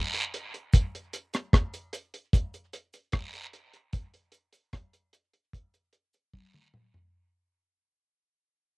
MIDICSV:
0, 0, Header, 1, 2, 480
1, 0, Start_track
1, 0, Tempo, 800213
1, 439, Time_signature, 4, 2, 24, 8
1, 5264, End_track
2, 0, Start_track
2, 0, Title_t, "Drums"
2, 84, Note_on_c, 9, 42, 56
2, 144, Note_off_c, 9, 42, 0
2, 204, Note_on_c, 9, 42, 74
2, 264, Note_off_c, 9, 42, 0
2, 325, Note_on_c, 9, 42, 41
2, 385, Note_off_c, 9, 42, 0
2, 438, Note_on_c, 9, 69, 71
2, 441, Note_on_c, 9, 36, 100
2, 444, Note_on_c, 9, 42, 115
2, 498, Note_off_c, 9, 69, 0
2, 501, Note_off_c, 9, 36, 0
2, 504, Note_off_c, 9, 42, 0
2, 569, Note_on_c, 9, 42, 49
2, 629, Note_off_c, 9, 42, 0
2, 680, Note_on_c, 9, 42, 70
2, 681, Note_on_c, 9, 69, 59
2, 740, Note_off_c, 9, 42, 0
2, 741, Note_off_c, 9, 69, 0
2, 801, Note_on_c, 9, 42, 54
2, 802, Note_on_c, 9, 69, 78
2, 808, Note_on_c, 9, 37, 62
2, 861, Note_off_c, 9, 42, 0
2, 862, Note_off_c, 9, 69, 0
2, 868, Note_off_c, 9, 37, 0
2, 919, Note_on_c, 9, 36, 106
2, 922, Note_on_c, 9, 42, 88
2, 924, Note_on_c, 9, 37, 107
2, 979, Note_off_c, 9, 36, 0
2, 982, Note_off_c, 9, 42, 0
2, 984, Note_off_c, 9, 37, 0
2, 1041, Note_on_c, 9, 42, 53
2, 1042, Note_on_c, 9, 69, 43
2, 1101, Note_off_c, 9, 42, 0
2, 1101, Note_off_c, 9, 69, 0
2, 1157, Note_on_c, 9, 42, 77
2, 1163, Note_on_c, 9, 69, 54
2, 1217, Note_off_c, 9, 42, 0
2, 1223, Note_off_c, 9, 69, 0
2, 1283, Note_on_c, 9, 42, 48
2, 1343, Note_off_c, 9, 42, 0
2, 1399, Note_on_c, 9, 36, 119
2, 1402, Note_on_c, 9, 42, 97
2, 1403, Note_on_c, 9, 69, 78
2, 1459, Note_off_c, 9, 36, 0
2, 1462, Note_off_c, 9, 42, 0
2, 1463, Note_off_c, 9, 69, 0
2, 1523, Note_on_c, 9, 42, 43
2, 1523, Note_on_c, 9, 69, 48
2, 1583, Note_off_c, 9, 42, 0
2, 1583, Note_off_c, 9, 69, 0
2, 1639, Note_on_c, 9, 42, 84
2, 1640, Note_on_c, 9, 69, 48
2, 1699, Note_off_c, 9, 42, 0
2, 1700, Note_off_c, 9, 69, 0
2, 1759, Note_on_c, 9, 69, 56
2, 1762, Note_on_c, 9, 42, 44
2, 1819, Note_off_c, 9, 69, 0
2, 1822, Note_off_c, 9, 42, 0
2, 1873, Note_on_c, 9, 42, 85
2, 1879, Note_on_c, 9, 36, 101
2, 1880, Note_on_c, 9, 37, 104
2, 1883, Note_on_c, 9, 74, 71
2, 1933, Note_off_c, 9, 42, 0
2, 1939, Note_off_c, 9, 36, 0
2, 1940, Note_off_c, 9, 37, 0
2, 1943, Note_off_c, 9, 74, 0
2, 2002, Note_on_c, 9, 42, 50
2, 2062, Note_off_c, 9, 42, 0
2, 2119, Note_on_c, 9, 42, 85
2, 2179, Note_off_c, 9, 42, 0
2, 2240, Note_on_c, 9, 42, 44
2, 2300, Note_off_c, 9, 42, 0
2, 2355, Note_on_c, 9, 42, 106
2, 2359, Note_on_c, 9, 36, 118
2, 2360, Note_on_c, 9, 69, 66
2, 2415, Note_off_c, 9, 42, 0
2, 2419, Note_off_c, 9, 36, 0
2, 2420, Note_off_c, 9, 69, 0
2, 2481, Note_on_c, 9, 42, 51
2, 2541, Note_off_c, 9, 42, 0
2, 2590, Note_on_c, 9, 42, 62
2, 2599, Note_on_c, 9, 69, 52
2, 2650, Note_off_c, 9, 42, 0
2, 2659, Note_off_c, 9, 69, 0
2, 2714, Note_on_c, 9, 42, 60
2, 2722, Note_on_c, 9, 69, 72
2, 2774, Note_off_c, 9, 42, 0
2, 2782, Note_off_c, 9, 69, 0
2, 2836, Note_on_c, 9, 42, 85
2, 2838, Note_on_c, 9, 36, 93
2, 2839, Note_on_c, 9, 37, 108
2, 2896, Note_off_c, 9, 42, 0
2, 2898, Note_off_c, 9, 36, 0
2, 2899, Note_off_c, 9, 37, 0
2, 2959, Note_on_c, 9, 42, 56
2, 2961, Note_on_c, 9, 69, 43
2, 3019, Note_off_c, 9, 42, 0
2, 3021, Note_off_c, 9, 69, 0
2, 3077, Note_on_c, 9, 42, 72
2, 3080, Note_on_c, 9, 69, 60
2, 3137, Note_off_c, 9, 42, 0
2, 3140, Note_off_c, 9, 69, 0
2, 3199, Note_on_c, 9, 42, 46
2, 3259, Note_off_c, 9, 42, 0
2, 3319, Note_on_c, 9, 36, 110
2, 3321, Note_on_c, 9, 69, 66
2, 3324, Note_on_c, 9, 42, 92
2, 3379, Note_off_c, 9, 36, 0
2, 3381, Note_off_c, 9, 69, 0
2, 3384, Note_off_c, 9, 42, 0
2, 3442, Note_on_c, 9, 42, 50
2, 3442, Note_on_c, 9, 69, 47
2, 3502, Note_off_c, 9, 42, 0
2, 3502, Note_off_c, 9, 69, 0
2, 3555, Note_on_c, 9, 42, 76
2, 3558, Note_on_c, 9, 69, 41
2, 3615, Note_off_c, 9, 42, 0
2, 3618, Note_off_c, 9, 69, 0
2, 3678, Note_on_c, 9, 69, 55
2, 3684, Note_on_c, 9, 42, 40
2, 3738, Note_off_c, 9, 69, 0
2, 3744, Note_off_c, 9, 42, 0
2, 3800, Note_on_c, 9, 36, 84
2, 3800, Note_on_c, 9, 48, 54
2, 3801, Note_on_c, 9, 74, 68
2, 3860, Note_off_c, 9, 36, 0
2, 3860, Note_off_c, 9, 48, 0
2, 3861, Note_off_c, 9, 74, 0
2, 3924, Note_on_c, 9, 47, 53
2, 3984, Note_off_c, 9, 47, 0
2, 4041, Note_on_c, 9, 45, 76
2, 4101, Note_off_c, 9, 45, 0
2, 4163, Note_on_c, 9, 43, 82
2, 4223, Note_off_c, 9, 43, 0
2, 5264, End_track
0, 0, End_of_file